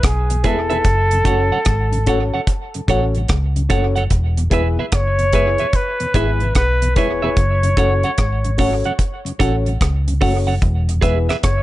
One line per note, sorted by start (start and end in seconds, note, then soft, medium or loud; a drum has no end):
0.03 0.45 B1 medium
0.03 0.48 G#4 medium
0.03 kick loud
0.03 cross-stick loud
0.03 closed hi-hat medium
0.30 0.37 E2 medium
0.30 0.37 B2 medium
0.30 closed hi-hat medium
0.43 0.82 E1 medium
0.43 0.57 G#3 medium
0.43 0.66 B3 medium
0.43 0.57 B3 medium
0.43 0.66 E4 medium
0.43 0.57 E4 medium
0.43 0.67 G#4 medium
0.43 0.59 G#4 medium
0.43 2.90 A4 medium
0.43 0.67 B4 medium
0.43 0.60 B4 medium
0.43 0.60 E5 medium
0.43 kick medium
0.43 closed hi-hat medium
0.69 0.78 E2 medium
0.69 0.78 B2 soft
0.69 0.82 B3 medium
0.69 0.82 E4 medium
0.69 0.83 G#4 medium
0.69 0.77 G#4 medium
0.69 0.77 B4 medium
0.69 0.83 B4 medium
0.69 0.76 E5 medium
0.69 closed hi-hat soft
0.84 1.23 F#1 loud
0.84 kick loud
0.84 closed hi-hat medium
1.11 1.19 F#2 medium
1.11 1.19 C#3 medium
1.11 closed hi-hat medium
1.24 1.50 F#1 medium
1.24 1.38 A3 medium
1.24 1.47 C#4 medium
1.24 1.38 C#4 medium
1.24 1.48 F#4 medium
1.24 1.38 F#4 medium
1.24 1.48 A4 medium
1.24 1.41 A4 medium
1.24 1.48 C#5 medium
1.24 1.41 C#5 medium
1.24 1.42 F#5 medium
1.24 kick loud
1.24 closed hi-hat medium
1.52 1.59 F#2 medium
1.52 1.59 C#3 medium
1.52 1.59 A4 medium
1.52 1.59 C#5 medium
1.52 1.58 F#5 medium
1.65 2.30 G#1 loud
1.65 kick loud
1.65 cross-stick loud
1.65 closed hi-hat medium
1.92 1.99 F#2 medium
1.92 1.99 C#3 medium
1.92 closed hi-hat soft
2.06 2.19 A3 medium
2.06 2.29 C#4 medium
2.06 2.19 C#4 medium
2.06 2.30 F#4 medium
2.06 2.20 F#4 medium
2.06 2.30 A4 medium
2.06 2.22 A4 medium
2.06 2.30 C#5 medium
2.06 2.23 C#5 medium
2.06 2.23 F#5 medium
2.06 kick medium
2.06 closed hi-hat medium
2.34 2.40 F#2 medium
2.34 2.40 C#3 medium
2.34 2.41 A4 soft
2.34 2.40 C#5 soft
2.34 2.40 F#5 medium
2.47 kick loud
2.47 closed hi-hat medium
2.74 2.81 F#2 medium
2.74 2.81 C#3 medium
2.74 closed hi-hat soft
2.88 3.27 A1 medium
2.88 3.01 A3 medium
2.88 3.11 C#4 medium
2.88 3.01 C#4 medium
2.88 3.11 F#4 medium
2.88 3.01 F#4 medium
2.88 3.11 A4 medium
2.88 3.04 A4 medium
2.88 3.11 C#5 loud
2.88 3.04 C#5 medium
2.88 3.05 F#5 medium
2.88 kick medium
2.88 closed hi-hat medium
3.15 3.22 F#2 medium
3.15 3.22 C#3 medium
3.15 closed hi-hat soft
3.28 3.68 C#2 medium
3.28 kick loud
3.28 cross-stick loud
3.28 closed hi-hat medium
3.56 3.62 F#2 medium
3.56 3.62 C#3 medium
3.56 closed hi-hat soft
3.69 4.09 F#1 medium
3.69 3.82 A3 medium
3.69 3.92 C#4 medium
3.69 3.82 C#4 medium
3.69 3.92 F#4 medium
3.69 3.82 F#4 medium
3.69 3.85 A4 medium
3.69 3.93 A4 medium
3.69 3.85 C#5 medium
3.69 3.93 C#5 medium
3.69 3.86 F#5 medium
3.69 kick loud
3.69 closed hi-hat medium
3.96 4.03 F#2 medium
3.96 4.03 C#3 medium
3.96 4.03 A4 medium
3.96 4.03 C#5 medium
3.96 4.02 F#5 medium
3.96 closed hi-hat soft
4.10 4.49 E1 loud
4.10 kick loud
4.10 closed hi-hat medium
4.37 4.44 E2 medium
4.37 4.44 B2 medium
4.37 closed hi-hat medium
4.50 4.76 E1 medium
4.50 4.63 G#3 medium
4.50 4.63 B3 medium
4.50 4.74 B3 medium
4.50 4.63 E4 medium
4.50 4.74 E4 medium
4.50 4.67 G#4 medium
4.50 4.74 G#4 medium
4.50 4.75 B4 loud
4.50 4.67 B4 medium
4.50 4.68 E5 medium
4.50 kick medium
4.50 closed hi-hat medium
4.77 4.84 E2 medium
4.77 4.84 B2 medium
4.77 4.86 G#4 soft
4.77 4.85 B4 medium
4.77 4.85 E5 medium
4.92 5.56 F#1 medium
4.92 5.77 C#5 loud
4.92 kick loud
4.92 cross-stick loud
4.92 closed hi-hat medium
5.19 5.25 E2 medium
5.19 5.25 B2 medium
5.19 closed hi-hat soft
5.33 5.45 G#3 medium
5.33 5.55 B3 medium
5.33 5.46 B3 medium
5.33 5.56 E4 medium
5.33 5.46 E4 medium
5.33 5.56 G#4 medium
5.33 5.48 G#4 medium
5.33 5.56 B4 medium
5.33 5.49 B4 medium
5.33 5.49 E5 medium
5.33 kick medium
5.33 closed hi-hat medium
5.58 5.67 E2 medium
5.58 5.67 B2 medium
5.58 5.67 G#4 soft
5.58 5.66 B4 soft
5.58 5.66 E5 medium
5.58 closed hi-hat soft
5.73 6.56 B4 loud
5.73 kick loud
5.73 closed hi-hat medium
6.00 6.07 E2 medium
6.00 6.07 B2 medium
6.00 closed hi-hat soft
6.14 6.53 G#1 medium
6.14 6.27 G#3 medium
6.14 6.37 B3 medium
6.14 6.27 B3 medium
6.14 6.37 E4 medium
6.14 6.27 E4 medium
6.14 6.30 G#4 medium
6.14 6.37 G#4 medium
6.14 6.37 B4 loud
6.14 6.30 B4 medium
6.14 6.30 E5 medium
6.14 kick medium
6.14 closed hi-hat medium
6.40 6.48 E2 medium
6.40 6.48 B2 medium
6.40 closed hi-hat soft
6.55 6.97 B1 medium
6.55 6.94 B4 loud
6.55 kick loud
6.55 cross-stick loud
6.55 closed hi-hat medium
6.82 6.89 E2 medium
6.82 6.88 B2 medium
6.82 closed hi-hat medium
6.96 7.34 E1 medium
6.96 7.08 G#3 medium
6.96 7.18 B3 medium
6.96 7.08 B3 medium
6.96 7.19 E4 medium
6.96 7.08 E4 medium
6.96 7.19 G#4 medium
6.96 7.12 G#4 medium
6.96 7.19 B4 loud
6.96 7.12 B4 medium
6.96 9.37 C#5 loud
6.96 7.12 E5 medium
6.96 kick loud
6.96 closed hi-hat medium
7.22 7.29 E2 medium
7.22 7.29 B2 medium
7.22 7.35 B3 medium
7.22 7.35 E4 medium
7.22 7.35 G#4 medium
7.22 7.30 G#4 medium
7.22 7.29 B4 medium
7.22 7.35 B4 medium
7.22 7.29 E5 medium
7.37 7.75 F#1 loud
7.37 kick loud
7.37 closed hi-hat medium
7.63 7.69 F#2 medium
7.63 7.70 C#3 medium
7.63 closed hi-hat medium
7.77 8.02 F#1 loud
7.77 7.90 A3 medium
7.77 8.00 C#4 medium
7.77 7.90 C#4 medium
7.77 8.00 F#4 medium
7.77 7.90 F#4 medium
7.77 7.92 A4 medium
7.77 8.00 A4 medium
7.77 7.93 C#5 loud
7.77 8.00 C#5 loud
7.77 7.93 F#5 medium
7.77 kick loud
7.77 closed hi-hat medium
8.03 8.10 F#2 medium
8.03 8.11 C#3 medium
8.03 8.11 A4 medium
8.03 8.11 C#5 medium
8.03 8.10 F#5 medium
8.03 closed hi-hat soft
8.18 8.81 G#1 medium
8.18 kick loud
8.18 cross-stick loud
8.18 closed hi-hat medium
8.44 8.51 F#2 medium
8.44 8.51 C#3 medium
8.44 closed hi-hat soft
8.58 8.70 A3 medium
8.58 8.81 C#4 medium
8.58 8.71 C#4 medium
8.58 8.71 F#4 medium
8.58 8.81 F#4 medium
8.58 8.81 A4 medium
8.58 8.74 A4 medium
8.58 8.81 C#5 medium
8.58 8.74 C#5 medium
8.58 8.75 F#5 medium
8.58 kick medium
8.58 open hi-hat medium
8.84 8.92 F#2 medium
8.84 8.92 C#3 medium
8.84 8.93 A4 soft
8.84 8.92 C#5 soft
8.84 8.92 F#5 medium
8.84 closed hi-hat soft
8.99 kick loud
8.99 closed hi-hat medium
9.25 9.32 F#2 medium
9.25 9.32 C#3 medium
9.25 closed hi-hat soft
9.39 9.78 A1 medium
9.39 9.52 A3 medium
9.39 9.63 C#4 medium
9.39 9.53 C#4 medium
9.39 9.63 F#4 medium
9.39 9.53 F#4 medium
9.39 9.55 A4 medium
9.39 9.63 A4 medium
9.39 9.55 C#5 medium
9.39 9.63 C#5 medium
9.39 9.56 F#5 medium
9.39 kick loud
9.39 closed hi-hat medium
9.66 9.73 F#2 medium
9.66 9.73 C#3 medium
9.66 closed hi-hat soft
9.81 10.19 C#2 medium
9.81 kick loud
9.81 cross-stick loud
9.81 closed hi-hat medium
10.08 10.14 F#2 medium
10.08 10.14 C#3 medium
10.08 closed hi-hat medium
10.21 10.60 F#1 medium
10.21 10.34 A3 medium
10.21 10.44 C#4 medium
10.21 10.34 C#4 medium
10.21 10.44 F#4 medium
10.21 10.34 F#4 medium
10.21 10.36 A4 medium
10.21 10.44 A4 medium
10.21 10.37 C#5 medium
10.21 10.45 C#5 medium
10.21 10.37 F#5 medium
10.21 kick loud
10.21 open hi-hat medium
10.47 10.54 F#2 medium
10.47 10.54 C#3 soft
10.47 10.54 A4 soft
10.47 10.54 C#5 medium
10.47 10.54 F#5 medium
10.62 11.00 E1 loud
10.62 kick loud
10.62 closed hi-hat medium
10.88 10.95 E2 medium
10.88 10.95 B2 medium
10.88 closed hi-hat medium
11.01 11.28 E1 loud
11.01 11.15 G#3 medium
11.01 11.25 B3 medium
11.01 11.15 B3 medium
11.01 11.25 E4 medium
11.01 11.16 E4 medium
11.01 11.17 G#4 medium
11.01 11.25 G#4 medium
11.01 11.18 B4 medium
11.01 11.26 B4 medium
11.01 11.18 E5 medium
11.01 kick loud
11.01 closed hi-hat medium
11.29 11.36 E2 medium
11.29 11.36 B2 medium
11.29 11.36 G#4 medium
11.29 11.36 B4 medium
11.29 11.36 E5 medium
11.29 cross-stick medium
11.29 closed hi-hat soft
11.43 11.63 F#1 medium
11.43 11.63 C#5 loud
11.43 kick loud
11.43 cross-stick loud
11.43 closed hi-hat medium